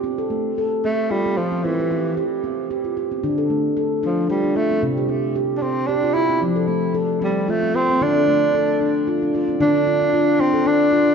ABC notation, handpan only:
X:1
M:3/4
L:1/16
Q:"Swing 16ths" 1/4=113
K:Dm
V:1 name="Handpan"
C A A,2 A2 C2 F C F C | C G C2 G2 C2 G F G C | D A A,2 A2 D2 F D F C | C G C2 G2 C2 G F G C |
C A A,2 A2 C2 F C F C | D A A,2 A2 D2 F D F C | D2 F D F2 D A D2 F D |]
V:2 name="Handpan" clef=bass
z12 | z12 | D,12 | C,12 |
F,12 | D,12 | D,8 z4 |]